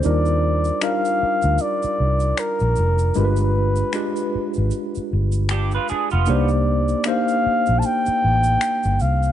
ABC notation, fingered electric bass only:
X:1
M:4/4
L:1/16
Q:"Swing 16ths" 1/4=77
K:Eblyd
V:1 name="Fingered electric bass" clef=bass
E,,4 z3 D,, z2 C,,2 z B,,, F,,,2 | G,,,4 z3 _A,,, z2 G,,,4 z F,,, | C,,4 z3 B,,, z2 A,,,2 z G,,, C,,2 |]